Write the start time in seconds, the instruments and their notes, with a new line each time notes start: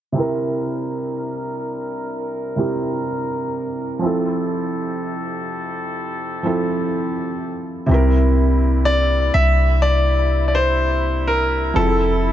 0.12 brass ensemble C2 C3 D4 E4 A#4, felt piano C3 C4
0.17 felt piano E4 A#4
2.56 felt piano C3 C4 E4 G4
3.99 brass ensemble F2 G4 A4, felt piano F3 C4
4.04 felt piano E4 A4
6.43 felt piano F3 C4 E4 A4
7.86 808-style bass C2, felt piano C3 C4, brass ensemble C3 G3 A#3 D4 E4
7.91 felt piano E4 A#4
8.85 grand piano D5
9.34 808-style bass C2, grand piano E5
9.82 grand piano D5
10.48 grand piano D5
10.55 grand piano C5
11.27 grand piano A#4
11.74 808-style bass F1, felt piano F3 C4, brass ensemble F3 C4 G4 A5, grand piano A4
11.79 felt piano E4 G#4
11.88 felt piano A4